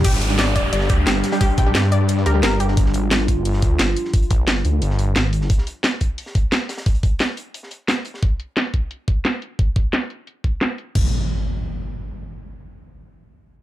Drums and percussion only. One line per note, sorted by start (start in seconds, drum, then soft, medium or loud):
0.04 kick loud
0.04 closed hi-hat loud
0.04 crash loud
0.14 snare soft
0.21 closed hi-hat medium
0.39 snare loud
0.39 closed hi-hat loud
0.39 closed hi-hat medium
0.55 kick medium
0.55 closed hi-hat medium
0.72 closed hi-hat loud
0.72 open hi-hat medium
0.81 snare soft
0.89 kick loud
0.89 closed hi-hat medium
1.07 snare loud
1.07 closed hi-hat loud
1.07 closed hi-hat medium
1.23 snare loud
1.23 closed hi-hat medium
1.32 snare loud
1.32 closed hi-hat medium
1.41 kick loud
1.41 closed hi-hat medium
1.41 closed hi-hat loud
1.49 closed hi-hat soft
1.57 kick loud
1.57 closed hi-hat medium
1.75 snare loud
1.75 closed hi-hat medium
1.84 snare soft
1.91 closed hi-hat medium
2.08 closed hi-hat medium
2.08 closed hi-hat loud
2.17 snare soft
2.26 closed hi-hat medium
2.43 snare loud
2.43 closed hi-hat medium
2.60 closed hi-hat medium
2.68 snare medium
2.77 kick loud
2.77 closed hi-hat medium
2.86 snare soft
2.94 closed hi-hat medium
3.11 snare loud
3.11 closed hi-hat medium
3.28 kick medium
3.28 closed hi-hat medium
3.45 closed hi-hat medium
3.45 open hi-hat medium
3.53 snare soft
3.62 kick loud
3.62 closed hi-hat medium
3.79 snare loud
3.79 closed hi-hat medium
3.96 closed hi-hat medium
4.05 snare soft
4.13 kick loud
4.13 closed hi-hat medium
4.22 closed hi-hat soft
4.30 kick loud
4.30 closed hi-hat medium
4.48 snare loud
4.48 closed hi-hat medium
4.56 snare soft
4.65 closed hi-hat medium
4.82 closed hi-hat medium
4.90 snare soft
4.99 closed hi-hat medium
5.16 snare loud
5.16 closed hi-hat medium
5.33 closed hi-hat medium
5.41 snare soft
5.50 kick loud
5.50 closed hi-hat medium
5.58 snare soft
5.67 closed hi-hat medium
5.83 snare loud
5.83 closed hi-hat medium
6.01 kick medium
6.01 closed hi-hat medium
6.18 closed hi-hat medium
6.18 open hi-hat medium
6.26 snare soft
6.35 kick loud
6.35 closed hi-hat medium
6.52 snare loud
6.52 closed hi-hat medium
6.69 snare medium
6.69 closed hi-hat medium
6.78 snare medium
6.78 closed hi-hat medium
6.86 kick loud
6.86 closed hi-hat medium
6.94 closed hi-hat soft
7.03 kick loud
7.03 closed hi-hat medium
7.19 snare loud
7.19 closed hi-hat medium
7.28 snare soft
7.37 closed hi-hat medium
7.54 closed hi-hat medium
7.63 snare soft
7.71 closed hi-hat medium
7.88 snare loud
7.88 closed hi-hat medium
8.05 closed hi-hat medium
8.14 snare soft
8.22 kick loud
8.22 closed hi-hat medium
8.40 closed hi-hat medium
8.57 snare loud
8.57 closed hi-hat medium
8.74 kick medium
8.74 closed hi-hat medium
8.91 closed hi-hat loud
9.08 kick medium
9.08 closed hi-hat medium
9.25 snare loud
9.25 closed hi-hat medium
9.42 closed hi-hat medium
9.59 kick loud
9.59 closed hi-hat medium
9.76 kick loud
9.76 closed hi-hat medium
9.93 snare loud
9.93 closed hi-hat loud
10.10 closed hi-hat medium
10.27 closed hi-hat medium
10.44 kick medium
10.44 closed hi-hat medium
10.61 snare loud
10.61 closed hi-hat medium
10.78 closed hi-hat medium
10.95 kick loud
10.95 crash medium